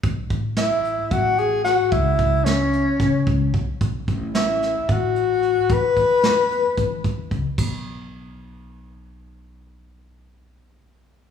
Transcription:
<<
  \new Staff \with { instrumentName = "Tenor saxophone" } { \time 7/8 \key e \mixolydian \tempo 4 = 111 r4 e'4 fis'8 gis'8 fis'8 | e'4 cis'2 r8 | r4 e'4 fis'4. | b'2~ b'8 r4 |
r2. r8 | r2. r8 | }
  \new Staff \with { instrumentName = "Upright bass" } { \clef bass \time 7/8 \key e \mixolydian b,,8 a,,4. a,,4. | cis,8 cis,4. cis8 cis,8 b,,16 r16 | b,,8 a,,4. a,,4. | e,8 e,4. e8 e,8 cis,16 r16 |
b,,2.~ b,,8~ | b,,2.~ b,,8 | }
  \new DrumStaff \with { instrumentName = "Drums" } \drummode { \time 7/8 <hh bd>8 <hh bd>8 <hh sn>8 hh8 <hh bd>8 hh8 <hh sn>8 | <hh bd>8 <hh bd>8 <hh sn>8 hh8 <hh bd sn>8 <hh bd>8 <hh bd>8 | <hh bd>8 <hh bd>8 <hh sn>8 <hh sn>8 <hh bd>8 hh8 hh8 | <hh bd>8 <hh bd>8 <hh sn>8 hh8 <hh bd>8 <hh bd>8 <hh bd>8 |
<cymc bd>4 r4 r4. | r4 r4 r4. | }
>>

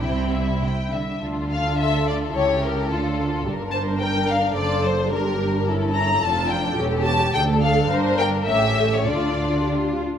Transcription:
<<
  \new Staff \with { instrumentName = "Violin section" } { \time 2/4 \key c \major \tempo 4 = 106 g''8 e''8 g''8 e''8 | \key d \minor r8 f''8 e''8 d''8 | cis''8 bes'8 a'4 | r8 a''8 g''8 f''8 |
d''8 c''8 bes'4 | r8 bes''8 a''8 g''8 | r8 a''8 g''8 f''8 | r8 g''8 e''8. cis''16 |
d''4 r4 | }
  \new Staff \with { instrumentName = "Viola section" } { \time 2/4 \key c \major c'4 r4 | \key d \minor r4 a'4 | e'4 f'8 f'8 | g'8 c''8 bes'4 |
a'4 g'4 | e'4 f'4 | a'8 g'8 a'4 | c''8 bes'8 a'4 |
f'4 g'8 f'8 | }
  \new Staff \with { instrumentName = "Violin section" } { \time 2/4 \key c \major << { e'4. r8 | \key d \minor a'2~ | a'2 | bes'2 |
c''4 bes'4 | a'2 | g'4 a'4 | bes'4 g'4 |
f'4. r8 | } \\ { r2 | f'2 | g'4 f'4 | d'2~ |
d'2 | cis'4 d'4 | cis'4 d'4 | d'4 cis'4 |
d'4. r8 | } >> }
  \new Staff \with { instrumentName = "Cello section" } { \clef bass \time 2/4 \key c \major c4 c8 d8 | \key d \minor d2 | cis4 d4 | g,2 |
fis,4 g,4~ | g,4 f,4 | e,4 d,4 | g,4 a,4 |
d4. r8 | }
  \new Staff \with { instrumentName = "Double bass section" } { \clef bass \time 2/4 \key c \major c,4. r8 | \key d \minor d,2 | cis,4 d,4 | g,,2 |
fis,,4 g,,4~ | g,,4 f,,4 | e,,4 d,4 | g,,4 a,,4 |
d,4. r8 | }
>>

